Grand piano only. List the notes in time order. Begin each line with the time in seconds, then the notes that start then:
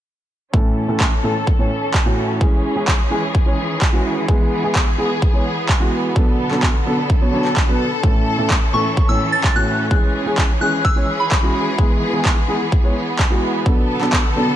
0.53 A2 E3 A3 C#4 A4
0.88 A2 E3 A3 C#4 A4
1.23 A2 E3 A3 C#4 A4
1.58 A2 E3 A3 C#4 C#5
2.05 A2 E3 A3 C#4 F#4
2.40 E3 G#3 C#4 G#4
2.76 E3 G#3 C#4 G#4
3.11 E3 G#3 C#4 G#4
3.46 E3 G#3 C#4 C#5
3.93 E3 G#3 C#4 F#4
4.28 E3 G#3 B3 G#4
4.63 E3 G#3 B3 G#4
4.98 E3 G#3 B3 G#4
5.33 E3 G#3 B3 C#5
5.80 E3 G#3 B3 F#4
6.15 B2 F#3 B3 D4 A4
6.50 B2 F#3 B3 D4 A4
6.86 B2 F#3 B3 D4 A4
7.21 B2 F#3 B3 D4 C#5
7.33 B2 F#3 B3 D4 C#5
7.68 B2 F#3 B3 D4 B4
8.03 A2 E3 A3 C#4 A4
8.38 A2 E3 A3 C#4 A4
8.73 A2 E3 A3 C#4 A4
9.08 A2 E3 A3 C#4 C#5
9.55 A2 E3 A3 C#4 F#4
9.90 E3 G#3 C#4 G#4
10.26 E3 G#3 C#4 G#4
10.61 E3 G#3 C#4 G#4
10.96 E3 G#3 C#4 C#5
11.43 E3 G#3 C#4 F#4
11.78 E3 G#3 B3 G#4
12.13 E3 G#3 B3 G#4
12.48 E3 G#3 B3 G#4
12.83 E3 G#3 B3 C#5
13.30 E3 G#3 B3 F#4
13.65 B2 F#3 B3 D4 A4
14.01 B2 F#3 B3 D4 A4
14.36 B2 F#3 B3 D4 A4